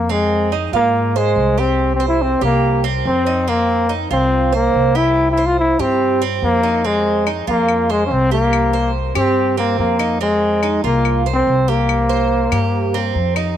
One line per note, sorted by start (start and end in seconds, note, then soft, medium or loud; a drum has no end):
0.00 0.67 F2 medium
0.00 0.13 A#3 medium
0.09 0.53 G#3 medium
0.09 0.50 C4 medium
0.52 0.72 D#4 medium
0.73 1.32 G#2 medium
0.73 1.19 A#3 medium
0.73 1.14 F4 medium
1.16 1.61 G#3 medium
1.16 1.56 C5 medium
1.36 2.36 C2 medium
1.58 1.94 C4 loud
1.58 1.98 G4 medium
1.95 2.07 C4 medium
2.00 2.41 C5 medium
2.08 2.23 E4 medium
2.22 2.42 C4 medium
2.41 3.01 C2 medium
2.41 2.82 A#3 loud
2.41 2.83 G4 medium
2.84 3.25 C4 medium
3.05 4.05 F2 medium
3.05 3.50 C4 loud
3.26 3.47 D#4 medium
3.48 3.90 A#3 loud
3.48 3.88 C4 medium
3.89 4.10 D#4 medium
4.11 4.70 C2 medium
4.11 4.51 C4 loud
4.11 4.52 F4 medium
4.53 4.98 A#3 loud
4.53 4.94 C5 medium
4.74 5.73 C2 medium
4.95 5.31 E4 loud
4.95 5.36 G4 medium
5.31 5.48 E4 loud
5.37 5.78 C5 medium
5.46 5.59 F4 loud
5.59 5.82 E4 medium
5.79 6.39 G2 medium
5.79 6.22 C4 loud
5.79 6.20 G4 medium
6.22 6.62 C4 medium
6.42 7.42 F2 medium
6.42 6.87 A#3 loud
6.63 6.84 D#4 medium
6.84 7.27 G#3 medium
6.84 7.25 C4 medium
7.27 7.47 D#4 medium
7.27 claves medium
7.47 8.07 F2 medium
7.47 7.92 A#3 loud
7.47 7.88 F4 medium
7.68 claves medium
7.90 8.06 G#3 medium
7.90 8.31 C5 medium
8.07 8.13 C#4 medium
8.11 9.10 C2 medium
8.11 8.32 C4 loud
8.31 8.91 A#3 loud
8.31 8.72 G4 medium
8.53 claves medium
8.73 9.14 C5 medium
9.15 9.75 G2 medium
9.15 9.55 C4 loud
9.15 9.56 G4 medium
9.15 claves medium
9.57 9.78 A#3 medium
9.57 9.98 C4 medium
9.78 10.77 F2 medium
9.78 10.18 A#3 medium
9.99 10.20 D#4 medium
9.99 claves medium
10.21 10.80 G#3 medium
10.21 10.61 C4 medium
10.63 10.83 D#4 medium
10.63 claves medium
10.84 11.43 C2 medium
10.84 11.23 A#3 medium
10.84 11.25 F4 medium
11.05 claves medium
11.26 11.67 C5 medium
11.33 11.70 C4 loud
11.47 12.46 C2 medium
11.68 13.15 A#3 medium
11.68 12.09 G4 medium
11.89 claves medium
12.09 12.50 C5 medium
12.52 13.11 G2 medium
12.52 12.93 G4 medium
12.52 claves medium
12.94 13.35 C4 medium
13.15 13.57 F2 medium
13.36 13.56 D#4 medium
13.36 claves medium